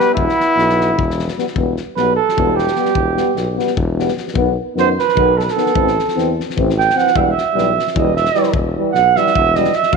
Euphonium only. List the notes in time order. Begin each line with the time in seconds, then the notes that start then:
Already playing: B3
1.38 B3
1.57 B3
1.97 B3
2.38 B3
2.75 B3
3.15 B3
3.56 B3
3.97 B3
4.35 B3
4.75 B3
5.17 B3
5.56 B3
5.75 C4
6.15 C4
6.57 C4
6.95 C4
7.15 G3
7.54 G3
7.97 G3
8.35 G3
8.76 G3
9.16 G3
9.57 G3
9.93 F#3